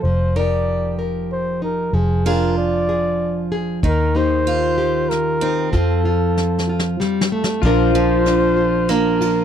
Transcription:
<<
  \new Staff \with { instrumentName = "Flugelhorn" } { \time 3/4 \key f \mixolydian \tempo 4 = 95 c''8 d''4 r8 c''8 bes'8 | aes'8 bes'8 d''4. r8 | bes'8 c''4. bes'4 | a'2 r4 |
c''2 bes'4 | }
  \new Staff \with { instrumentName = "Pedal steel guitar" } { \time 3/4 \key f \mixolydian r2. | r2. | r2. | r2. |
f'2. | }
  \new Staff \with { instrumentName = "Nylon-string guitar" } { \time 3/4 \key f \mixolydian << { r8 <ees' bes'>4 bes'4 ees'8 | r8 <d' aes'>4 aes'4 aes'8 | r8 <bes ees' g'>4 g'4 ees'8 | <c' f'>8 f'4 f'4. |
<f d' f' bes'>4 d'8 f'8 d'8 f'8 | } \\ { f2. | f2. | ees2. | f2 g8 a8 |
bes,8 f2~ f8 | } >> }
  \new Staff \with { instrumentName = "Steel-string acoustic guitar" } { \time 3/4 \key f \mixolydian r8 g'2~ g'8 | r8 f'2~ f'8 | ees'4 f'4. c'8~ | c'8 r2 r8 |
r8 f4. bes4 | }
  \new Staff \with { instrumentName = "Fingered electric bass" } { \clef bass \time 3/4 \key f \mixolydian f,,2. | f,,2. | ees,2. | f,2. |
bes,,2. | }
  \new DrumStaff \with { instrumentName = "Drums" } \drummode { \time 3/4 r4 r4 r4 | r4 r4 r4 | <hh bd>4 hh4 <hh ss>4 | <hh bd>4 \tuplet 3/2 { sn8 sn8 sn8 sn8 sn8 sn8 } |
<bd cymr>4 <cymr ss>4 <cymr ss>8 cymr8 | }
>>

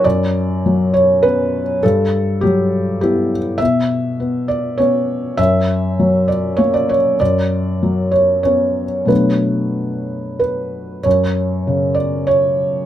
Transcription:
<<
  \new Staff \with { instrumentName = "Felt piano" } { \time 3/4 \key b \minor \tempo 4 = 99 d''4. cis''8 b'4 | a'4 g'4 g'8 r8 | e''4. d''8 cis''4 | e''4. d''8 cis''16 d''16 cis''8 |
d''4. cis''8 cis''4 | b'2 b'4 | cis''4. d''8 cis''4 | }
  \new Staff \with { instrumentName = "Felt piano" } { \clef bass \time 3/4 \key b \minor fis,4 fis4 <b cis'>4 | g,4 fis4 <b e'>4 | b,4 b4 <b cis'>4 | fis,4 fis4 <ais cis'>4 |
fis,4 fis4 <b cis'>4 | <b, fis a d'>2. | fis,4 cis2 | }
>>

